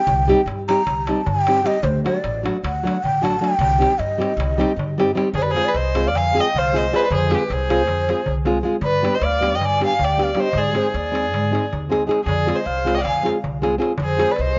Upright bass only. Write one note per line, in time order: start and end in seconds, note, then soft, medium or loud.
0.07 0.31 C2 loud
0.46 0.70 G2 loud
0.87 1.11 C2 medium
1.27 1.61 G2 medium
1.83 2.07 D2 loud
2.24 2.48 A1 loud
2.64 2.88 D2 medium
3.04 3.38 A1 medium
3.59 3.83 C2 loud
3.99 4.23 G2 medium
4.37 4.61 C2 loud
4.76 5.11 G2 medium
5.33 5.58 F2 loud
5.74 6.14 C2 loud
6.14 6.37 F2 medium
6.54 6.87 C2 medium
7.10 7.34 F2 loud
7.50 7.89 C2 loud
7.89 8.12 F2 medium
8.27 8.60 C2 medium
8.81 9.05 G2 loud
9.21 9.60 D2 loud
9.60 9.83 G2 medium
10.00 10.33 D2 medium
10.55 10.78 G#2 loud
10.94 11.33 D#2 loud
11.33 11.57 G#2 medium
11.73 12.05 D#2 medium
12.26 12.50 F2 loud
12.66 13.07 C2 medium
13.05 13.28 F2 medium
13.44 13.77 C2 medium
14.00 14.23 F2 loud
14.39 14.59 C2 loud